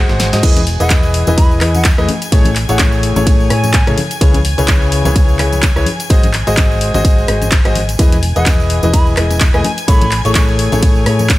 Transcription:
Already playing: G#5 G#6
0.09 G#1 G#3 F#4 G#4 C5 F#5, snare
0.20 snare, open hi-hat
0.33 G#2 F#4 G#4 C5 D#5, snare, closed hi-hat
0.43 E1 E3 E4 G#4 B4 D#5 G#5 G#6, kick, closed hi-hat, ride, tambourine, crash
0.56 closed hi-hat, tambourine, high conga
0.67 open hi-hat
0.80 E1 E3 E4 G#4 B4 D#5 F#5, closed hi-hat, tambourine
0.90 kick, clap, closed hi-hat, ride, tambourine, high conga
1.03 tambourine
1.14 open hi-hat
1.27 E1 E3 E4 G#4 B4 D#5, closed hi-hat, tambourine, high conga
1.38 B5, kick, closed hi-hat, ride, tambourine
1.51 tambourine
1.61 E2 E3 E4 G#4 B4 D#5, cross-stick, clap, open hi-hat
1.75 F#5, closed hi-hat, tambourine, high conga
1.85 kick, clap, closed hi-hat, ride, tambourine
1.98 E2 A3 E4 G#4 B4 D#5, cross-stick, tambourine
2.09 open hi-hat, high conga
2.22 closed hi-hat, tambourine
2.32 A1 A3 E4 G#4 A4 C#5, kick, closed hi-hat, ride
2.45 closed hi-hat, tambourine, high conga
2.56 clap, open hi-hat
2.69 A1 A3 E4 G#4 A4 C#5 F#5, closed hi-hat, tambourine
2.79 kick, clap, closed hi-hat, ride, tambourine, high conga
2.92 tambourine
3.03 open hi-hat
3.16 A1 A3 E4 G#4 A4 C#5, closed hi-hat, tambourine, high conga
3.26 kick, closed hi-hat, ride, tambourine
3.40 tambourine
3.50 A2 A3 E4 G#4 A4 C#5 G#5, cross-stick, open hi-hat
3.64 closed hi-hat, tambourine, high conga
3.74 kick, clap, closed hi-hat, ride
3.87 A2 C#3 E4 G#4 A4 C#5, cross-stick, closed hi-hat, tambourine
3.98 open hi-hat, high conga
4.11 closed hi-hat, tambourine
4.21 C#2 C#3 E4 G#4 B4 C#5, kick, closed hi-hat, ride, tambourine
4.34 closed hi-hat, tambourine, high conga
4.45 open hi-hat
4.58 C#2 C#3 E4 G#4 B4 C#5, closed hi-hat, tambourine
4.68 kick, clap, closed hi-hat, ride, tambourine, high conga
4.82 tambourine
4.92 open hi-hat
5.05 C#2 C#3 E4 G#4 B4 C#5, closed hi-hat, tambourine, high conga
5.16 kick, closed hi-hat, ride, tambourine
5.28 tambourine
5.39 C#2 C#3 E4 G#4 B4 C#5, cross-stick, clap, open hi-hat
5.53 closed hi-hat, tambourine, high conga
5.63 kick, clap, closed hi-hat, ride, tambourine
5.76 C#2 E4 G#4 B4 C#5, cross-stick, tambourine
5.86 open hi-hat, high conga
6.00 closed hi-hat, tambourine
6.10 G#1 G#3 F#4 G#4 C5 D#5, kick, closed hi-hat, ride, tambourine
6.23 closed hi-hat, tambourine, high conga
6.33 clap, open hi-hat
6.47 G#1 G#3 F#4 G#4 C5 D#5, closed hi-hat, tambourine
6.57 kick, clap, closed hi-hat, ride, tambourine, high conga
6.71 tambourine
6.81 open hi-hat
6.94 G#1 G#3 F#4 G#4 C5 D#5, closed hi-hat, tambourine, high conga
7.05 kick, closed hi-hat, ride, tambourine
7.18 tambourine
7.28 G#1 G#3 F#4 G#4 C5 D#5, cross-stick, open hi-hat
7.42 closed hi-hat, tambourine, high conga
7.52 kick, clap, closed hi-hat, ride, tambourine
7.65 G#1 G#3 F#4 G#4 C5 D#5, cross-stick, closed hi-hat, tambourine
7.75 open hi-hat, high conga
7.89 closed hi-hat, tambourine
7.99 E1 E3 E4 G#4 B4 D#5 G#5 G#6, kick, closed hi-hat, ride, tambourine
8.12 closed hi-hat, tambourine, high conga
8.23 open hi-hat
8.36 E1 E3 E4 G#4 B4 D#5 F#5, closed hi-hat, tambourine
8.46 kick, clap, closed hi-hat, ride, tambourine, high conga
8.60 tambourine
8.70 open hi-hat
8.83 E1 E3 E4 G#4 B4 D#5, closed hi-hat, tambourine, high conga
8.94 B5, kick, closed hi-hat, ride, tambourine
9.07 tambourine
9.17 E1 E3 E4 G#4 B4 D#5, cross-stick, clap, open hi-hat
9.30 closed hi-hat, tambourine, high conga
9.40 kick, clap, closed hi-hat, ride
9.54 E1 A3 E4 G#4 B4 D#5 G#5, cross-stick, tambourine
9.64 G#5, open hi-hat, high conga
9.78 closed hi-hat, tambourine
9.88 A1 A3 E4 G#4 A4 C#5 B5, kick, closed hi-hat, ride, tambourine
10.01 closed hi-hat, tambourine, high conga
10.11 clap, open hi-hat
10.25 A1 A3 E4 G#4 A4 C#5 C#6, closed hi-hat, tambourine
10.35 C#6, kick, clap, closed hi-hat, ride, tambourine, high conga
10.48 tambourine
10.59 open hi-hat
10.72 A1 A3 E4 G#4 A4 C#5, closed hi-hat, tambourine, high conga
10.83 kick, closed hi-hat, ride
10.95 tambourine
11.06 A2 A3 E4 G#4 A4 C#5, cross-stick, open hi-hat
11.19 closed hi-hat, tambourine, high conga
11.29 kick, clap, closed hi-hat, ride, tambourine

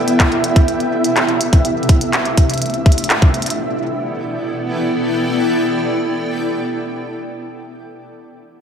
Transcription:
Already playing: C3 B3 E4 A4 D5 E5 G5
0.08 closed hi-hat
0.20 kick, clap, closed hi-hat
0.32 closed hi-hat
0.44 closed hi-hat
0.56 kick, closed hi-hat
0.68 closed hi-hat
0.80 closed hi-hat
1.04 closed hi-hat
1.17 clap, closed hi-hat
1.29 closed hi-hat
1.41 closed hi-hat
1.53 kick, closed hi-hat
1.65 closed hi-hat
1.83 closed hi-hat
1.89 kick, closed hi-hat
2.01 closed hi-hat
2.13 clap, closed hi-hat
2.25 closed hi-hat
2.38 kick, closed hi-hat
2.50 closed hi-hat
2.54 closed hi-hat
2.58 closed hi-hat
2.62 closed hi-hat
2.66 closed hi-hat
2.70 closed hi-hat
2.74 closed hi-hat
2.86 kick, closed hi-hat
2.92 closed hi-hat
2.98 closed hi-hat
3.04 closed hi-hat
3.10 clap, closed hi-hat
3.22 kick, closed hi-hat
3.34 closed hi-hat
3.42 closed hi-hat
3.46 closed hi-hat
3.50 closed hi-hat
3.59 B3
3.66 E4
3.73 A4
3.80 D5
3.88 G5

